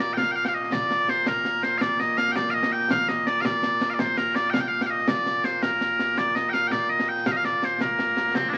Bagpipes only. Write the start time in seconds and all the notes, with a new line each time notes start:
Already playing: A#2 A#3
0.00 D5
0.14 G5
0.18 F5
0.31 G5
0.36 F5
0.45 F5 G5
0.54 D#5
0.64 D#5
0.73 D5
1.09 C5
1.28 A#4
1.63 C5
1.78 D5 F5
2.00 D#5
2.17 F5
2.32 G5
2.36 D5
2.51 D#5 F5
2.72 G5
2.91 F5
3.08 D#5
3.27 D5
3.41 F5
3.45 D5
3.90 F5
3.94 D5
3.99 C5
4.17 A#4
4.35 D5
4.50 F5 G5
4.60 G5
4.68 F5
4.82 G5
4.86 F5
4.90 D#5
5.09 D5
5.44 C5
5.62 A#4
6.18 D5
6.35 D#5
6.49 F5 G5
6.67 G5
6.72 D5
6.90 D#5
7.09 G5
7.26 F5
7.32 D#5
7.37 F5
7.45 D5
7.64 C5
7.75 C5
7.81 A#4
8.35 C4
8.49 A#3 D4